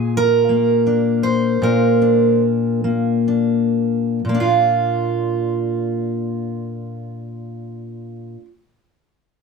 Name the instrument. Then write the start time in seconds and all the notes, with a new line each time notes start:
steel-string acoustic guitar
Already playing: A#2 G#4
0.17 A#4
0.49 A#3
0.87 D4
1.23 C5
1.62 A#2 A#4
2.02 D4
2.84 A#3
3.28 D4
4.25 A#2
4.29 A#3
4.34 D4
4.40 F4